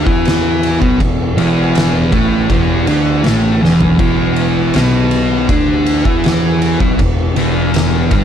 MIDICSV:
0, 0, Header, 1, 5, 480
1, 0, Start_track
1, 0, Tempo, 749064
1, 640, Time_signature, 4, 2, 24, 8
1, 5281, End_track
2, 0, Start_track
2, 0, Title_t, "Tonewheel organ"
2, 0, Program_c, 0, 16
2, 0, Note_on_c, 0, 52, 74
2, 0, Note_on_c, 0, 59, 67
2, 0, Note_on_c, 0, 66, 84
2, 5281, Note_off_c, 0, 52, 0
2, 5281, Note_off_c, 0, 59, 0
2, 5281, Note_off_c, 0, 66, 0
2, 5281, End_track
3, 0, Start_track
3, 0, Title_t, "Distorted electric guitar"
3, 0, Program_c, 1, 30
3, 33, Note_on_c, 1, 52, 95
3, 39, Note_on_c, 1, 64, 104
3, 509, Note_off_c, 1, 52, 0
3, 512, Note_off_c, 1, 64, 0
3, 517, Note_on_c, 1, 47, 103
3, 521, Note_on_c, 1, 59, 95
3, 631, Note_off_c, 1, 47, 0
3, 633, Note_off_c, 1, 59, 0
3, 641, Note_on_c, 1, 40, 76
3, 832, Note_off_c, 1, 40, 0
3, 877, Note_on_c, 1, 40, 89
3, 883, Note_on_c, 1, 52, 107
3, 1351, Note_off_c, 1, 40, 0
3, 1354, Note_off_c, 1, 52, 0
3, 1358, Note_on_c, 1, 45, 93
3, 1363, Note_on_c, 1, 57, 102
3, 1592, Note_off_c, 1, 45, 0
3, 1594, Note_off_c, 1, 57, 0
3, 1594, Note_on_c, 1, 40, 97
3, 1600, Note_on_c, 1, 52, 104
3, 1830, Note_off_c, 1, 40, 0
3, 1833, Note_off_c, 1, 52, 0
3, 1836, Note_on_c, 1, 50, 102
3, 1842, Note_on_c, 1, 62, 106
3, 2070, Note_off_c, 1, 50, 0
3, 2073, Note_on_c, 1, 45, 87
3, 2074, Note_off_c, 1, 62, 0
3, 2079, Note_on_c, 1, 57, 95
3, 2310, Note_off_c, 1, 45, 0
3, 2313, Note_off_c, 1, 57, 0
3, 2315, Note_on_c, 1, 40, 95
3, 2322, Note_on_c, 1, 52, 103
3, 2549, Note_off_c, 1, 40, 0
3, 2554, Note_off_c, 1, 52, 0
3, 2556, Note_on_c, 1, 40, 105
3, 2562, Note_on_c, 1, 52, 109
3, 3031, Note_off_c, 1, 40, 0
3, 3034, Note_off_c, 1, 52, 0
3, 3039, Note_on_c, 1, 47, 94
3, 3042, Note_on_c, 1, 59, 114
3, 3512, Note_off_c, 1, 47, 0
3, 3514, Note_off_c, 1, 59, 0
3, 3515, Note_on_c, 1, 50, 87
3, 3518, Note_on_c, 1, 62, 104
3, 3875, Note_off_c, 1, 50, 0
3, 3875, Note_on_c, 1, 52, 85
3, 3882, Note_off_c, 1, 62, 0
3, 3882, Note_on_c, 1, 64, 105
3, 4351, Note_off_c, 1, 52, 0
3, 4354, Note_off_c, 1, 64, 0
3, 4361, Note_on_c, 1, 47, 94
3, 4365, Note_on_c, 1, 59, 101
3, 4473, Note_off_c, 1, 47, 0
3, 4476, Note_off_c, 1, 59, 0
3, 4482, Note_on_c, 1, 40, 77
3, 4673, Note_off_c, 1, 40, 0
3, 4722, Note_on_c, 1, 40, 85
3, 4727, Note_on_c, 1, 52, 108
3, 5194, Note_off_c, 1, 40, 0
3, 5196, Note_off_c, 1, 52, 0
3, 5201, Note_on_c, 1, 43, 89
3, 5206, Note_on_c, 1, 55, 108
3, 5281, Note_off_c, 1, 43, 0
3, 5281, Note_off_c, 1, 55, 0
3, 5281, End_track
4, 0, Start_track
4, 0, Title_t, "Picked electric bass"
4, 0, Program_c, 2, 34
4, 42, Note_on_c, 2, 40, 100
4, 496, Note_off_c, 2, 40, 0
4, 524, Note_on_c, 2, 35, 83
4, 633, Note_off_c, 2, 35, 0
4, 642, Note_on_c, 2, 28, 82
4, 864, Note_off_c, 2, 28, 0
4, 886, Note_on_c, 2, 28, 95
4, 1338, Note_off_c, 2, 28, 0
4, 1361, Note_on_c, 2, 33, 104
4, 1584, Note_off_c, 2, 33, 0
4, 1602, Note_on_c, 2, 28, 85
4, 1824, Note_off_c, 2, 28, 0
4, 1847, Note_on_c, 2, 38, 97
4, 2067, Note_off_c, 2, 38, 0
4, 2086, Note_on_c, 2, 33, 95
4, 2307, Note_off_c, 2, 33, 0
4, 2324, Note_on_c, 2, 28, 98
4, 2546, Note_off_c, 2, 28, 0
4, 2558, Note_on_c, 2, 28, 98
4, 3014, Note_off_c, 2, 28, 0
4, 3043, Note_on_c, 2, 35, 88
4, 3496, Note_off_c, 2, 35, 0
4, 3518, Note_on_c, 2, 38, 91
4, 3854, Note_off_c, 2, 38, 0
4, 3878, Note_on_c, 2, 40, 95
4, 4334, Note_off_c, 2, 40, 0
4, 4360, Note_on_c, 2, 35, 96
4, 4472, Note_off_c, 2, 35, 0
4, 4481, Note_on_c, 2, 28, 83
4, 4704, Note_off_c, 2, 28, 0
4, 4728, Note_on_c, 2, 28, 102
4, 5178, Note_off_c, 2, 28, 0
4, 5202, Note_on_c, 2, 31, 104
4, 5281, Note_off_c, 2, 31, 0
4, 5281, End_track
5, 0, Start_track
5, 0, Title_t, "Drums"
5, 42, Note_on_c, 9, 36, 109
5, 106, Note_off_c, 9, 36, 0
5, 163, Note_on_c, 9, 51, 101
5, 179, Note_on_c, 9, 38, 116
5, 227, Note_off_c, 9, 51, 0
5, 243, Note_off_c, 9, 38, 0
5, 405, Note_on_c, 9, 51, 77
5, 469, Note_off_c, 9, 51, 0
5, 523, Note_on_c, 9, 36, 109
5, 588, Note_off_c, 9, 36, 0
5, 643, Note_on_c, 9, 36, 87
5, 643, Note_on_c, 9, 51, 99
5, 707, Note_off_c, 9, 36, 0
5, 707, Note_off_c, 9, 51, 0
5, 883, Note_on_c, 9, 51, 75
5, 947, Note_off_c, 9, 51, 0
5, 1123, Note_on_c, 9, 51, 108
5, 1139, Note_on_c, 9, 38, 126
5, 1187, Note_off_c, 9, 51, 0
5, 1203, Note_off_c, 9, 38, 0
5, 1361, Note_on_c, 9, 36, 107
5, 1363, Note_on_c, 9, 51, 75
5, 1425, Note_off_c, 9, 36, 0
5, 1427, Note_off_c, 9, 51, 0
5, 1600, Note_on_c, 9, 51, 101
5, 1601, Note_on_c, 9, 36, 108
5, 1664, Note_off_c, 9, 51, 0
5, 1665, Note_off_c, 9, 36, 0
5, 1840, Note_on_c, 9, 51, 78
5, 1904, Note_off_c, 9, 51, 0
5, 2076, Note_on_c, 9, 51, 90
5, 2092, Note_on_c, 9, 38, 111
5, 2140, Note_off_c, 9, 51, 0
5, 2156, Note_off_c, 9, 38, 0
5, 2337, Note_on_c, 9, 38, 65
5, 2401, Note_off_c, 9, 38, 0
5, 2439, Note_on_c, 9, 43, 93
5, 2503, Note_off_c, 9, 43, 0
5, 2558, Note_on_c, 9, 36, 111
5, 2558, Note_on_c, 9, 49, 91
5, 2622, Note_off_c, 9, 36, 0
5, 2622, Note_off_c, 9, 49, 0
5, 2796, Note_on_c, 9, 51, 71
5, 2860, Note_off_c, 9, 51, 0
5, 3035, Note_on_c, 9, 51, 107
5, 3051, Note_on_c, 9, 38, 122
5, 3099, Note_off_c, 9, 51, 0
5, 3116, Note_off_c, 9, 38, 0
5, 3275, Note_on_c, 9, 51, 78
5, 3339, Note_off_c, 9, 51, 0
5, 3517, Note_on_c, 9, 51, 104
5, 3518, Note_on_c, 9, 36, 117
5, 3581, Note_off_c, 9, 51, 0
5, 3583, Note_off_c, 9, 36, 0
5, 3758, Note_on_c, 9, 51, 82
5, 3822, Note_off_c, 9, 51, 0
5, 3879, Note_on_c, 9, 36, 108
5, 3943, Note_off_c, 9, 36, 0
5, 3997, Note_on_c, 9, 51, 97
5, 4013, Note_on_c, 9, 38, 110
5, 4061, Note_off_c, 9, 51, 0
5, 4077, Note_off_c, 9, 38, 0
5, 4240, Note_on_c, 9, 51, 78
5, 4304, Note_off_c, 9, 51, 0
5, 4360, Note_on_c, 9, 36, 114
5, 4424, Note_off_c, 9, 36, 0
5, 4480, Note_on_c, 9, 36, 86
5, 4480, Note_on_c, 9, 51, 101
5, 4544, Note_off_c, 9, 36, 0
5, 4544, Note_off_c, 9, 51, 0
5, 4718, Note_on_c, 9, 51, 77
5, 4782, Note_off_c, 9, 51, 0
5, 4959, Note_on_c, 9, 51, 118
5, 4975, Note_on_c, 9, 38, 124
5, 5024, Note_off_c, 9, 51, 0
5, 5040, Note_off_c, 9, 38, 0
5, 5197, Note_on_c, 9, 51, 85
5, 5200, Note_on_c, 9, 36, 119
5, 5261, Note_off_c, 9, 51, 0
5, 5264, Note_off_c, 9, 36, 0
5, 5281, End_track
0, 0, End_of_file